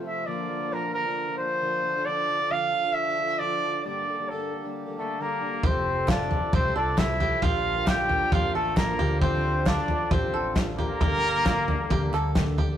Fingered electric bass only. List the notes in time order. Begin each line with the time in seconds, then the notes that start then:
5.64 F1
6.53 C2
6.76 C2
7.42 A#1
8.32 F2
8.54 A1
8.99 D2
10.11 A1
10.33 A1
11.01 G1
11.91 D2
12.13 D2